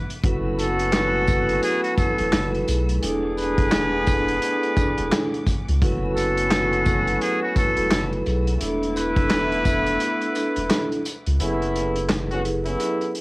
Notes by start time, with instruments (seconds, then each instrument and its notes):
Already playing: string section A3 F#5 D6
0.10 closed hi-hat
0.23 sub bass F#1, vibraphone F#3 E4 F#4 A4 B4, string section A3 G#5 B5 E6, horn section B3 C#4 F#4, kick, closed hi-hat
0.59 muted trumpet A4, closed hi-hat, tambourine
0.79 closed hi-hat
0.93 snare, clap, closed hi-hat
1.27 vibraphone F#3 E4 F#4 A4 B4, kick, closed hi-hat, tambourine
1.49 closed hi-hat
1.63 muted trumpet G#4, closed hi-hat
1.83 muted trumpet F#4, closed hi-hat
1.97 muted trumpet A4, kick, closed hi-hat, tambourine
2.18 sub bass E1, vibraphone F#3 E4 F#4 A4 B4, closed hi-hat
2.33 sub bass F#1, snare, clap, closed hi-hat
2.55 closed hi-hat
2.67 sub bass B1, vibraphone F#3 E4 G#4 A4 B4, closed hi-hat, tambourine
2.89 closed hi-hat
3.01 sub bass E1, horn section B3 D4 G#4, vibraphone D4 E4 A4, string section F#5 D6, closed hi-hat
3.37 muted trumpet B4, closed hi-hat, tambourine
3.58 vibraphone D4 E4 A4, kick, closed hi-hat
3.72 snare, clap, closed hi-hat
4.06 kick, closed hi-hat, tambourine
4.28 closed hi-hat
4.42 closed hi-hat
4.63 closed hi-hat
4.77 vibraphone D4 E4 A4, kick, closed hi-hat, tambourine
4.98 sub bass E1, closed hi-hat
5.12 snare, clap, closed hi-hat
5.34 closed hi-hat
5.47 kick, closed hi-hat, tambourine
5.68 sub bass C#2, closed hi-hat
5.81 sub bass F#1, vibraphone F#3 E4 F#4 A4 B4, string section A3 G#5 B5 E6, horn section B3 C#4 F#4, kick, closed hi-hat
6.16 muted trumpet A4, closed hi-hat, tambourine
6.37 closed hi-hat
6.51 snare, clap, closed hi-hat
6.73 closed hi-hat
6.86 vibraphone F#3 F#4 A4, kick, closed hi-hat, tambourine
7.07 closed hi-hat
7.21 muted trumpet G#4, closed hi-hat
7.42 muted trumpet F#4
7.56 muted trumpet A4, kick, closed hi-hat, tambourine
7.76 sub bass E1, vibraphone F#3 E4 F#4 A4 B4, closed hi-hat
7.91 sub bass F#1, snare, clap, closed hi-hat
8.13 closed hi-hat
8.25 sub bass B1, vibraphone F#3 E4 G#4 A4 B4, closed hi-hat, tambourine
8.47 closed hi-hat
8.58 sub bass E1, horn section A3 B3 E4, vibraphone D4 E4 A4, closed hi-hat
8.63 string section F#5 D6
8.83 closed hi-hat
8.96 muted trumpet B4, closed hi-hat, tambourine
9.16 vibraphone D4 E4 A4, kick, closed hi-hat
9.30 snare, clap, closed hi-hat
9.52 closed hi-hat
9.65 kick, closed hi-hat, tambourine
9.86 closed hi-hat
10.00 closed hi-hat
10.21 closed hi-hat
10.35 vibraphone D4 E4 A4, closed hi-hat, tambourine
10.56 sub bass E1, closed hi-hat
10.70 snare, clap, closed hi-hat
10.92 closed hi-hat
11.05 closed hi-hat, tambourine
11.26 sub bass C#2, closed hi-hat
11.40 sub bass F#1, vibraphone F#3 E4 G#4 A4 B4, horn section B3 C#4 E4, closed hi-hat
11.62 closed hi-hat
11.76 closed hi-hat
11.96 closed hi-hat
12.09 snare, clap, closed hi-hat
12.31 horn section B3 C#4 F#4, closed hi-hat
12.44 vibraphone F#3 E4 G#4 A4 B4, closed hi-hat
12.65 horn section B3 C#4 E4, closed hi-hat
12.80 closed hi-hat
13.01 closed hi-hat
13.15 closed hi-hat